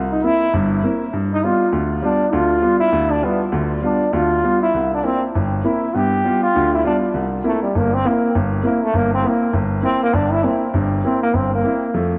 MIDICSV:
0, 0, Header, 1, 3, 480
1, 0, Start_track
1, 0, Key_signature, 0, "major"
1, 0, Tempo, 300451
1, 1794, Time_signature, 4, 2, 24, 8
1, 19467, End_track
2, 0, Start_track
2, 0, Title_t, "Trombone"
2, 0, Program_c, 0, 57
2, 196, Note_on_c, 0, 63, 85
2, 401, Note_on_c, 0, 64, 105
2, 425, Note_off_c, 0, 63, 0
2, 857, Note_off_c, 0, 64, 0
2, 2130, Note_on_c, 0, 63, 83
2, 2301, Note_on_c, 0, 65, 82
2, 2325, Note_off_c, 0, 63, 0
2, 2767, Note_off_c, 0, 65, 0
2, 3272, Note_on_c, 0, 62, 80
2, 3736, Note_on_c, 0, 65, 90
2, 3760, Note_off_c, 0, 62, 0
2, 4464, Note_off_c, 0, 65, 0
2, 4473, Note_on_c, 0, 64, 98
2, 4969, Note_on_c, 0, 62, 87
2, 4993, Note_off_c, 0, 64, 0
2, 5182, Note_on_c, 0, 59, 71
2, 5206, Note_off_c, 0, 62, 0
2, 5463, Note_off_c, 0, 59, 0
2, 6153, Note_on_c, 0, 62, 79
2, 6632, Note_on_c, 0, 65, 99
2, 6656, Note_off_c, 0, 62, 0
2, 7378, Note_off_c, 0, 65, 0
2, 7387, Note_on_c, 0, 64, 86
2, 7826, Note_off_c, 0, 64, 0
2, 7895, Note_on_c, 0, 62, 83
2, 8061, Note_on_c, 0, 60, 92
2, 8085, Note_off_c, 0, 62, 0
2, 8343, Note_off_c, 0, 60, 0
2, 9022, Note_on_c, 0, 64, 79
2, 9519, Note_on_c, 0, 67, 101
2, 9543, Note_off_c, 0, 64, 0
2, 10264, Note_off_c, 0, 67, 0
2, 10274, Note_on_c, 0, 65, 90
2, 10711, Note_off_c, 0, 65, 0
2, 10776, Note_on_c, 0, 64, 80
2, 10928, Note_off_c, 0, 64, 0
2, 10973, Note_on_c, 0, 62, 76
2, 11134, Note_off_c, 0, 62, 0
2, 11926, Note_on_c, 0, 57, 69
2, 12179, Note_off_c, 0, 57, 0
2, 12193, Note_on_c, 0, 55, 72
2, 12409, Note_on_c, 0, 58, 70
2, 12433, Note_off_c, 0, 55, 0
2, 12679, Note_on_c, 0, 60, 98
2, 12703, Note_off_c, 0, 58, 0
2, 12885, Note_on_c, 0, 58, 76
2, 12909, Note_off_c, 0, 60, 0
2, 13344, Note_off_c, 0, 58, 0
2, 13826, Note_on_c, 0, 58, 71
2, 14118, Note_on_c, 0, 57, 84
2, 14142, Note_off_c, 0, 58, 0
2, 14318, Note_on_c, 0, 58, 74
2, 14341, Note_off_c, 0, 57, 0
2, 14595, Note_off_c, 0, 58, 0
2, 14610, Note_on_c, 0, 60, 88
2, 14808, Note_on_c, 0, 58, 74
2, 14832, Note_off_c, 0, 60, 0
2, 15265, Note_off_c, 0, 58, 0
2, 15737, Note_on_c, 0, 60, 94
2, 16004, Note_off_c, 0, 60, 0
2, 16026, Note_on_c, 0, 58, 93
2, 16205, Note_on_c, 0, 62, 79
2, 16229, Note_off_c, 0, 58, 0
2, 16490, Note_on_c, 0, 64, 93
2, 16514, Note_off_c, 0, 62, 0
2, 16680, Note_on_c, 0, 60, 70
2, 16704, Note_off_c, 0, 64, 0
2, 17159, Note_off_c, 0, 60, 0
2, 17670, Note_on_c, 0, 60, 79
2, 17929, Note_off_c, 0, 60, 0
2, 17942, Note_on_c, 0, 58, 96
2, 18152, Note_on_c, 0, 60, 81
2, 18176, Note_off_c, 0, 58, 0
2, 18429, Note_off_c, 0, 60, 0
2, 18453, Note_on_c, 0, 58, 77
2, 19050, Note_off_c, 0, 58, 0
2, 19467, End_track
3, 0, Start_track
3, 0, Title_t, "Grand piano"
3, 0, Program_c, 1, 0
3, 0, Note_on_c, 1, 36, 67
3, 295, Note_off_c, 1, 36, 0
3, 381, Note_on_c, 1, 58, 45
3, 395, Note_on_c, 1, 64, 53
3, 396, Note_on_c, 1, 60, 45
3, 681, Note_off_c, 1, 58, 0
3, 688, Note_off_c, 1, 60, 0
3, 688, Note_off_c, 1, 64, 0
3, 859, Note_on_c, 1, 31, 74
3, 864, Note_on_c, 1, 43, 68
3, 1259, Note_off_c, 1, 31, 0
3, 1262, Note_off_c, 1, 43, 0
3, 1334, Note_on_c, 1, 60, 47
3, 1337, Note_on_c, 1, 58, 51
3, 1340, Note_on_c, 1, 64, 53
3, 1637, Note_off_c, 1, 60, 0
3, 1639, Note_off_c, 1, 58, 0
3, 1640, Note_off_c, 1, 64, 0
3, 1810, Note_on_c, 1, 43, 65
3, 2215, Note_off_c, 1, 43, 0
3, 2303, Note_on_c, 1, 55, 52
3, 2307, Note_on_c, 1, 59, 46
3, 2317, Note_on_c, 1, 65, 53
3, 2602, Note_off_c, 1, 55, 0
3, 2604, Note_off_c, 1, 59, 0
3, 2609, Note_off_c, 1, 65, 0
3, 2755, Note_on_c, 1, 38, 69
3, 3166, Note_off_c, 1, 38, 0
3, 3231, Note_on_c, 1, 55, 51
3, 3239, Note_on_c, 1, 59, 48
3, 3250, Note_on_c, 1, 65, 50
3, 3546, Note_off_c, 1, 55, 0
3, 3550, Note_off_c, 1, 59, 0
3, 3555, Note_off_c, 1, 65, 0
3, 3717, Note_on_c, 1, 38, 69
3, 3717, Note_on_c, 1, 50, 62
3, 4127, Note_off_c, 1, 38, 0
3, 4127, Note_off_c, 1, 50, 0
3, 4183, Note_on_c, 1, 55, 50
3, 4189, Note_on_c, 1, 59, 49
3, 4189, Note_on_c, 1, 65, 53
3, 4501, Note_off_c, 1, 55, 0
3, 4505, Note_off_c, 1, 59, 0
3, 4505, Note_off_c, 1, 65, 0
3, 4670, Note_on_c, 1, 38, 70
3, 5083, Note_off_c, 1, 38, 0
3, 5157, Note_on_c, 1, 55, 47
3, 5157, Note_on_c, 1, 59, 44
3, 5162, Note_on_c, 1, 65, 53
3, 5469, Note_off_c, 1, 55, 0
3, 5469, Note_off_c, 1, 59, 0
3, 5471, Note_off_c, 1, 65, 0
3, 5626, Note_on_c, 1, 38, 67
3, 5628, Note_on_c, 1, 50, 71
3, 6041, Note_off_c, 1, 38, 0
3, 6042, Note_off_c, 1, 50, 0
3, 6093, Note_on_c, 1, 55, 48
3, 6113, Note_on_c, 1, 59, 48
3, 6113, Note_on_c, 1, 65, 52
3, 6417, Note_off_c, 1, 55, 0
3, 6427, Note_off_c, 1, 59, 0
3, 6427, Note_off_c, 1, 65, 0
3, 6597, Note_on_c, 1, 38, 73
3, 7008, Note_off_c, 1, 38, 0
3, 7092, Note_on_c, 1, 55, 48
3, 7093, Note_on_c, 1, 59, 47
3, 7102, Note_on_c, 1, 65, 56
3, 7397, Note_off_c, 1, 55, 0
3, 7397, Note_off_c, 1, 59, 0
3, 7401, Note_off_c, 1, 65, 0
3, 7572, Note_on_c, 1, 36, 61
3, 7976, Note_off_c, 1, 36, 0
3, 8044, Note_on_c, 1, 58, 47
3, 8050, Note_on_c, 1, 60, 49
3, 8057, Note_on_c, 1, 64, 54
3, 8353, Note_off_c, 1, 58, 0
3, 8356, Note_off_c, 1, 60, 0
3, 8359, Note_off_c, 1, 64, 0
3, 8554, Note_on_c, 1, 31, 71
3, 8948, Note_off_c, 1, 31, 0
3, 9019, Note_on_c, 1, 58, 52
3, 9033, Note_on_c, 1, 60, 42
3, 9035, Note_on_c, 1, 64, 58
3, 9321, Note_off_c, 1, 58, 0
3, 9328, Note_off_c, 1, 60, 0
3, 9329, Note_off_c, 1, 64, 0
3, 9498, Note_on_c, 1, 59, 60
3, 9510, Note_on_c, 1, 43, 63
3, 9900, Note_off_c, 1, 59, 0
3, 9907, Note_off_c, 1, 43, 0
3, 9982, Note_on_c, 1, 55, 49
3, 9988, Note_on_c, 1, 59, 44
3, 9995, Note_on_c, 1, 65, 56
3, 10283, Note_off_c, 1, 55, 0
3, 10286, Note_off_c, 1, 59, 0
3, 10290, Note_off_c, 1, 65, 0
3, 10473, Note_on_c, 1, 50, 74
3, 10474, Note_on_c, 1, 38, 70
3, 10869, Note_off_c, 1, 50, 0
3, 10870, Note_off_c, 1, 38, 0
3, 10934, Note_on_c, 1, 55, 49
3, 10946, Note_on_c, 1, 65, 56
3, 10948, Note_on_c, 1, 59, 42
3, 11240, Note_off_c, 1, 55, 0
3, 11246, Note_off_c, 1, 65, 0
3, 11247, Note_off_c, 1, 59, 0
3, 11409, Note_on_c, 1, 36, 64
3, 11817, Note_off_c, 1, 36, 0
3, 11888, Note_on_c, 1, 58, 49
3, 11894, Note_on_c, 1, 64, 58
3, 11902, Note_on_c, 1, 60, 44
3, 12198, Note_off_c, 1, 58, 0
3, 12201, Note_off_c, 1, 64, 0
3, 12205, Note_off_c, 1, 60, 0
3, 12387, Note_on_c, 1, 31, 68
3, 12787, Note_off_c, 1, 31, 0
3, 12859, Note_on_c, 1, 58, 51
3, 12869, Note_on_c, 1, 60, 44
3, 12871, Note_on_c, 1, 64, 58
3, 13164, Note_off_c, 1, 58, 0
3, 13169, Note_off_c, 1, 60, 0
3, 13170, Note_off_c, 1, 64, 0
3, 13345, Note_on_c, 1, 31, 70
3, 13746, Note_off_c, 1, 31, 0
3, 13794, Note_on_c, 1, 58, 54
3, 13802, Note_on_c, 1, 60, 47
3, 13811, Note_on_c, 1, 64, 56
3, 14112, Note_off_c, 1, 58, 0
3, 14116, Note_off_c, 1, 60, 0
3, 14120, Note_off_c, 1, 64, 0
3, 14281, Note_on_c, 1, 31, 69
3, 14694, Note_off_c, 1, 31, 0
3, 14735, Note_on_c, 1, 58, 49
3, 14750, Note_on_c, 1, 60, 48
3, 14754, Note_on_c, 1, 64, 56
3, 15062, Note_off_c, 1, 58, 0
3, 15070, Note_off_c, 1, 60, 0
3, 15072, Note_off_c, 1, 64, 0
3, 15232, Note_on_c, 1, 31, 71
3, 15648, Note_off_c, 1, 31, 0
3, 15698, Note_on_c, 1, 60, 48
3, 15702, Note_on_c, 1, 64, 57
3, 15703, Note_on_c, 1, 58, 49
3, 16023, Note_off_c, 1, 60, 0
3, 16025, Note_off_c, 1, 64, 0
3, 16026, Note_off_c, 1, 58, 0
3, 16194, Note_on_c, 1, 31, 68
3, 16609, Note_off_c, 1, 31, 0
3, 16680, Note_on_c, 1, 58, 50
3, 16681, Note_on_c, 1, 60, 43
3, 16694, Note_on_c, 1, 64, 54
3, 16993, Note_off_c, 1, 58, 0
3, 16994, Note_off_c, 1, 60, 0
3, 17000, Note_off_c, 1, 64, 0
3, 17153, Note_on_c, 1, 43, 71
3, 17158, Note_on_c, 1, 31, 64
3, 17567, Note_off_c, 1, 43, 0
3, 17570, Note_off_c, 1, 31, 0
3, 17645, Note_on_c, 1, 58, 50
3, 17650, Note_on_c, 1, 60, 47
3, 17651, Note_on_c, 1, 64, 56
3, 17955, Note_off_c, 1, 58, 0
3, 17957, Note_off_c, 1, 60, 0
3, 17957, Note_off_c, 1, 64, 0
3, 18115, Note_on_c, 1, 31, 63
3, 18527, Note_off_c, 1, 31, 0
3, 18592, Note_on_c, 1, 58, 45
3, 18608, Note_on_c, 1, 60, 46
3, 18614, Note_on_c, 1, 64, 56
3, 18907, Note_off_c, 1, 58, 0
3, 18914, Note_off_c, 1, 60, 0
3, 18917, Note_off_c, 1, 64, 0
3, 19078, Note_on_c, 1, 41, 63
3, 19084, Note_on_c, 1, 57, 68
3, 19467, Note_off_c, 1, 41, 0
3, 19467, Note_off_c, 1, 57, 0
3, 19467, End_track
0, 0, End_of_file